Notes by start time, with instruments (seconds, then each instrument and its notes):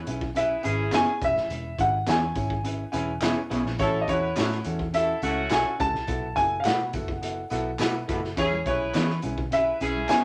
0.07 picked electric bass B1, upright piano C#4 E4 G#4 B4, closed hi-hat, tambourine
0.21 kick
0.35 upright piano C#4 E4 G#4 B4, horn section E4 G#4 B4, grand piano E5, closed hi-hat, tambourine
0.63 picked electric bass G#1, horn section C#4 E4 G#4, upright piano C#4 E4 G#4 B4, closed hi-hat, tambourine
0.91 picked electric bass F#1, clean electric guitar B3 E4 G#4 C#5, upright piano C#4 E4 G#4 B4, grand piano G#5, snare, clap, closed hi-hat, tambourine
1.21 picked electric bass E1, upright piano C#4 E4 G#4 B4, grand piano E5, kick, closed hi-hat, tambourine
1.36 picked electric bass F1, snare
1.50 picked electric bass E1, closed hi-hat, tambourine
1.78 picked electric bass G#1, upright piano C#4 E4 G#4 B4, grand piano F#5, kick, closed hi-hat
2.06 picked electric bass E2, clean electric guitar B3 E4 G#4 C#5, upright piano C#4 E4 G#4 B4, grand piano G#5, snare, clap, closed hi-hat, tambourine
2.35 picked electric bass G#1, upright piano C#4 E4 G#4 C#5, kick, closed hi-hat, tambourine
2.50 kick
2.64 upright piano C#4 E4 G#4 B4, closed hi-hat, tambourine
2.92 picked electric bass E1, upright piano C#4 E4 G#4 B4, closed hi-hat, tambourine
3.21 picked electric bass E1, clean electric guitar B3 E4 G#4 C#5, upright piano C#4 E4 G#4 B4, snare, clap, closed hi-hat, tambourine
3.50 picked electric bass B1, clean electric guitar B3 E4 G#4 C#5, upright piano C#4 E4 G#4 B4, closed hi-hat, tambourine
3.66 picked electric bass A#1, snare
3.79 picked electric bass A1, upright piano C#4 E4 F#4 A4, horn section E4 F#4 A4, grand piano C#5, kick, closed hi-hat, tambourine
4.01 grand piano D#5
4.07 picked electric bass E2, upright piano C#4 E4 F#4 A4, horn section E4 F#4 B4, grand piano C#5, kick, closed hi-hat, tambourine
4.36 picked electric bass A2, clean electric guitar C#4 F#4 A4 C#5, upright piano C#4 E4 F#4 A4, snare, clap, closed hi-hat, tambourine
4.52 snare
4.64 picked electric bass E2, upright piano C#4 E4 F#4 A4, closed hi-hat, tambourine
4.79 kick
4.93 upright piano C#4 E4 F#4 A4, horn section E4 F#4 A4, grand piano E5, closed hi-hat
5.22 picked electric bass C#2, horn section A3 C#4 F#4, upright piano C#4 E4 F#4 A4, closed hi-hat, tambourine
5.50 picked electric bass B1, clean electric guitar C#4 F#4 A4 C#5, upright piano C#4 E4 F#4 A4, grand piano G#5, snare, clap, closed hi-hat, tambourine
5.78 picked electric bass C#2, upright piano C#4 E4 F#4 A4, grand piano A5, kick, closed hi-hat, tambourine
5.94 picked electric bass C2, snare
6.06 picked electric bass B1, upright piano B3 E4 F#4 A4, kick, closed hi-hat, tambourine
6.36 picked electric bass F#1, upright piano B3 E4 F#4 A4, grand piano G#5, kick, closed hi-hat
6.60 grand piano F5
6.64 picked electric bass B2, clean electric guitar A3 E4 F#4 B4, upright piano B3 E4 F#4 A4, grand piano F#5, snare, clap, closed hi-hat, tambourine
6.93 picked electric bass F#1, upright piano B3 E4 F#4 A4, kick, closed hi-hat, tambourine
7.08 kick
7.21 upright piano B3 E4 F#4 A4, closed hi-hat
7.50 picked electric bass B1, upright piano B3 E4 F#4 A4, closed hi-hat, tambourine
7.79 picked electric bass B2, clean electric guitar A3 E4 F#4 B4, upright piano B3 E4 F#4 B4, snare, clap, closed hi-hat, tambourine
8.08 picked electric bass F#1, clean electric guitar A3 E4 F#4 B4, upright piano B3 E4 F#4 A4, kick, closed hi-hat, tambourine
8.24 snare
8.36 picked electric bass E2, upright piano C#4 E4 G#4 B4, horn section C#4 E4 G#4, grand piano C#5, kick, closed hi-hat, tambourine, muted conga
8.51 high conga
8.65 picked electric bass B1, upright piano C#4 E4 G#4 B4, horn section E4 G#4 B4, grand piano C#5, kick, closed hi-hat, muted conga
8.94 picked electric bass E3, clean electric guitar B3 E4 G#4 C#5, upright piano C#4 E4 G#4 B4, snare, clap, closed hi-hat, tambourine, muted conga
9.10 snare
9.22 picked electric bass B1, upright piano C#4 E4 G#4 B4, closed hi-hat, tambourine, muted conga, high conga, low conga
9.38 kick, low conga
9.51 upright piano C#4 E4 G#4 B4, horn section E4 G#4 B4, grand piano E5, closed hi-hat, tambourine
9.80 picked electric bass B1, upright piano C#4 E4 G#4 B4, horn section C#4 E4 G#4, closed hi-hat, tambourine, muted conga
9.95 high conga
10.09 clean electric guitar B3 E4 G#4 C#5, upright piano C#4 E4 G#4 B4, grand piano G#5, snare, clap, closed hi-hat, tambourine